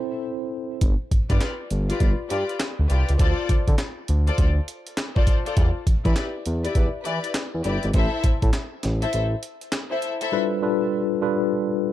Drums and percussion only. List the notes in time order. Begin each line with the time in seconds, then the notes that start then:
0.81 kick, closed hi-hat
1.11 kick, closed hi-hat
1.30 kick, closed hi-hat
1.41 snare, clap, closed hi-hat
1.71 closed hi-hat
1.90 closed hi-hat
2.00 kick, closed hi-hat
2.30 closed hi-hat
2.49 closed hi-hat
2.60 snare, clap, closed hi-hat
2.90 closed hi-hat
3.09 closed hi-hat
3.19 kick, closed hi-hat
3.49 kick, closed hi-hat
3.68 kick, closed hi-hat
3.78 snare, clap, closed hi-hat
4.08 closed hi-hat
4.27 closed hi-hat
4.38 kick, closed hi-hat
4.68 closed hi-hat
4.87 closed hi-hat
4.97 snare, clap, closed hi-hat
5.16 kick
5.27 kick, closed hi-hat
5.46 closed hi-hat
5.57 kick, closed hi-hat
5.87 kick, closed hi-hat
6.05 kick, closed hi-hat
6.16 snare, clap, closed hi-hat
6.46 closed hi-hat
6.65 closed hi-hat
6.75 kick, closed hi-hat
7.05 closed hi-hat
7.24 closed hi-hat
7.34 snare, clap, closed hi-hat
7.64 closed hi-hat
7.83 closed hi-hat
7.94 kick, closed hi-hat
8.24 kick, closed hi-hat
8.42 kick, closed hi-hat
8.53 snare, clap, closed hi-hat
8.83 snare, closed hi-hat
9.02 closed hi-hat
9.13 closed hi-hat
9.43 closed hi-hat
9.61 closed hi-hat
9.72 snare, clap, closed hi-hat
10.02 closed hi-hat
10.21 closed hi-hat